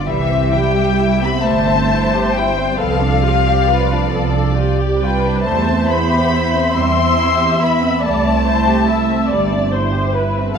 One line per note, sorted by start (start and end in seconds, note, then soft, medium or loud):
0.07 1.21 C2 medium
0.07 0.52 E3 medium
0.07 0.28 G3 medium
0.07 1.40 G4 medium
0.07 2.75 E5 medium
0.07 0.53 E5 medium
0.30 0.53 C4 medium
0.52 1.21 G3 medium
0.52 0.75 E4 medium
0.52 1.21 G5 medium
0.75 0.98 G4 medium
0.98 1.21 E4 medium
1.21 1.44 B3 medium
1.21 1.45 C4 medium
1.21 1.45 B5 medium
1.44 2.57 G1 medium
1.44 1.67 G3 medium
1.44 2.35 A3 medium
1.44 2.77 C5 medium
1.44 2.35 A5 medium
1.68 1.90 C4 medium
1.92 2.13 E4 medium
2.15 2.36 G4 medium
2.35 2.79 G3 medium
2.35 2.58 E4 soft
2.35 2.80 G5 medium
2.57 2.79 C4 medium
2.78 3.89 C2 medium
2.78 4.51 F3 medium
2.78 2.99 B3 medium
2.78 3.23 A4 medium
2.78 5.44 D5 medium
2.78 4.52 F5 medium
3.01 3.23 D4 soft
3.23 3.46 F4 soft
3.23 3.67 G4 medium
3.47 3.68 G4 medium
3.67 3.89 F4 medium
3.67 4.11 B4 medium
3.92 4.12 D4 medium
4.10 5.22 C2 medium
4.10 4.33 B3 medium
4.10 4.54 A4 medium
4.32 4.55 D4 medium
4.55 4.77 F4 soft
4.55 4.99 G4 medium
4.78 5.00 G4 medium
4.99 5.41 G3 medium
4.99 5.23 F4 medium
4.99 5.44 B4 medium
4.99 5.41 G5 medium
5.25 5.45 D4 medium
5.44 6.54 E2 medium
5.44 5.66 G3 medium
5.44 5.88 A3 medium
5.44 6.75 C5 medium
5.44 10.52 E5 medium
5.44 5.88 A5 medium
5.68 5.89 C4 medium
5.88 6.75 B3 medium
5.88 6.10 E4 soft
5.88 6.76 B5 medium
6.11 6.32 G4 medium
6.32 6.54 E4 medium
6.53 6.75 C4 medium
6.74 7.83 E2 medium
6.74 6.97 G3 medium
6.74 7.60 C4 medium
6.74 8.05 E5 medium
6.74 7.62 C6 medium
6.96 7.19 C4 medium
7.18 7.40 E4 soft
7.38 7.60 G4 medium
7.60 8.03 B3 medium
7.60 7.82 E4 medium
7.60 8.04 B5 medium
7.83 8.04 C4 medium
8.03 9.09 C2 medium
8.03 8.23 G3 medium
8.03 9.71 A3 medium
8.03 8.46 D5 medium
8.03 9.68 A5 medium
8.24 8.46 C4 medium
8.46 8.67 E4 medium
8.46 8.88 C5 medium
8.67 8.88 G4 medium
8.88 9.09 E4 medium
8.88 9.29 E5 medium
9.10 9.30 C4 medium
9.29 10.34 G1 medium
9.29 9.52 G3 medium
9.29 9.71 D5 medium
9.52 9.72 C4 medium
9.71 10.13 C5 medium
9.76 9.94 E4 medium
9.94 10.14 G4 medium
10.13 10.36 E4 medium
10.13 10.55 B4 medium
10.37 10.57 C4 medium
10.54 10.58 F3 medium
10.54 10.58 F5 medium